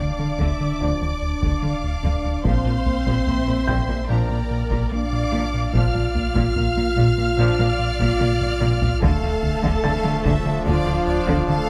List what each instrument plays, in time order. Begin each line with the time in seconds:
Already playing: sub bass D1, french horn section D4, viola section D5, violin section D6
0.00 analog synth bass D3, violin section F5
0.19 cello section D3, analog synth bass D3
0.39 double bass section D2, analog synth bass D2, cello section D3, violin section E5, taiko
0.60 cello section D3, analog synth bass D3
0.80 double bass section D2, analog synth bass D2, cello section D3, trombone section F3 D4, violin section D5
1.01 analog synth bass D2, cello section D3
1.22 analog synth bass D2
1.42 analog synth bass D2, cello section D3, taiko
1.62 double bass section D2, cello section D3, analog synth bass D3, violin section F5
1.84 analog synth bass D2
2.03 double bass section D2, analog synth bass D2, cello section D3
2.24 analog synth bass D2, cello section D3
2.44 sub bass A#1, double bass section A#1, cello section A#2, analog synth bass A#2, trombone section F3 D4, french horn section C4, viola section C5, violin section F5 C6, taiko
2.65 analog synth bass A#2, cello section A#2
2.86 analog synth bass A#3, taiko low
3.06 analog synth bass A#2, cello section A#2, taiko
3.27 double bass section A#1, cello section A#2, analog synth bass A#3, violin section E5, taiko low
3.48 cello section A#2, analog synth bass A#3
3.67 double bass section A#1, cello section A#2, analog synth bass A#2, felt piano G5 G6, taiko
3.88 cello section A#2, analog synth bass A#3
4.09 double bass section A#1, cello section A#2, analog synth bass A#2, trombone section F3 D4, french horn section A#3, viola section A#4, violin section D5 A#5
4.30 cello section A#2, analog synth bass A#2
4.51 analog synth bass A#2
4.70 cello section A#2, analog synth bass A#2, taiko
4.91 double bass section A#1, cello section A#2, analog synth bass A#3, french horn section D4, viola section D5, violin section F5 D6
5.13 analog synth bass A#2
5.32 double bass section A#1, cello section A#2, analog synth bass A#2
5.53 cello section A#2, analog synth bass A#2
5.73 sub bass A#1, double bass section A#1, cello section A#2, analog synth bass A#2, trombone section F3 D4, french horn section F4, violin section D5 F6, viola section F5, taiko
5.94 cello section A#2, analog synth bass A#2
6.15 analog synth bass A#3, taiko low
6.35 cello section A#2, analog synth bass A#2, taiko
6.56 double bass section A#1, cello section A#2, analog synth bass A#3, violin section F5, taiko low
6.77 cello section A#2, analog synth bass A#3
6.96 double bass section A#1, cello section A#2, analog synth bass A#2, taiko
7.18 cello section A#2, analog synth bass A#3
7.38 double bass section A#1, analog synth bass A#2, cello section A#2, trombone section F3 D4, violin section D5
7.59 cello section A#2, analog synth bass A#2
7.79 analog synth bass A#2
7.99 analog synth bass A#2, cello section A#2, taiko
8.20 double bass section A#1, cello section A#2, analog synth bass A#3, taiko mid
8.41 analog synth bass A#2, taiko mid
8.61 double bass section A#1, cello section A#2, analog synth bass A#2, taiko mid
8.81 cello section A#2, analog synth bass A#2, taiko low
9.01 sub bass D1, double bass section D2, analog synth bass D2, cello section D3, trombone section F3 D4, french horn section A3, viola section A4, violin section F5 A5, taiko
9.22 analog synth bass D2, cello section D3
9.43 analog synth bass D3, taiko low
9.63 analog synth bass D2, cello section D3, taiko
9.83 double bass section D2, cello section D3, analog synth bass D3, violin section F5, felt piano A6, taiko low
10.04 cello section D3, analog synth bass D3
10.24 double bass section D2, analog synth bass D2, cello section D3, violin section E5, taiko
10.45 cello section D3, analog synth bass D3
10.65 analog synth bass D2, double bass section D2, cello section D3, french horn section F3, viola section F4, violin section D5 F5
10.86 analog synth bass D2, cello section D3
11.06 analog synth bass D2, violin section D5
11.27 analog synth bass D2, cello section D3, taiko
11.48 double bass section D2, cello section D3, analog synth bass D3, french horn section A3, viola section A4, violin section F5 A5